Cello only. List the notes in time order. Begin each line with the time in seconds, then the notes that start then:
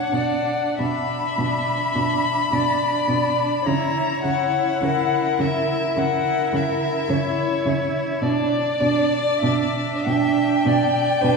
0.12 B2
0.79 B2
1.38 B2
1.95 B2
2.52 B2
3.08 B2
3.66 C#3
4.24 C#3
4.82 C#3
5.39 C#3
5.96 C#3
6.53 C#3
7.09 C#3
7.66 C#3
8.22 B2
8.80 B2
9.43 B2
10.07 B2
10.66 B2
11.23 B2